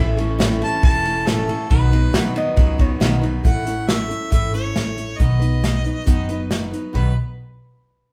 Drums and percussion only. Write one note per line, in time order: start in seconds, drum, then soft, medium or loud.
0.18 ride medium
0.40 snare loud
0.40 ride medium
0.62 ride medium
0.83 kick loud
0.83 ride loud
1.05 ride medium
1.27 snare loud
1.27 ride medium
1.49 ride medium
1.71 kick loud
1.71 ride medium
1.93 ride medium
2.14 snare loud
2.14 ride medium
2.36 ride medium
2.57 kick loud
2.57 ride medium
2.79 kick medium
2.79 ride medium
3.01 snare loud
3.01 ride medium
3.23 ride medium
3.45 kick loud
3.45 closed hi-hat medium
3.67 closed hi-hat medium
3.89 snare loud
3.89 closed hi-hat medium
4.11 closed hi-hat medium
4.32 kick loud
4.32 closed hi-hat medium
4.54 closed hi-hat medium
4.76 snare medium
4.76 closed hi-hat medium
4.98 closed hi-hat medium
5.20 kick loud
5.20 closed hi-hat medium
5.42 closed hi-hat medium
5.64 snare loud
5.64 closed hi-hat medium
5.86 closed hi-hat medium
6.07 kick loud
6.07 closed hi-hat medium
6.29 closed hi-hat medium
6.51 snare medium
6.51 closed hi-hat medium
6.73 closed hi-hat medium
6.95 kick medium
6.95 ride medium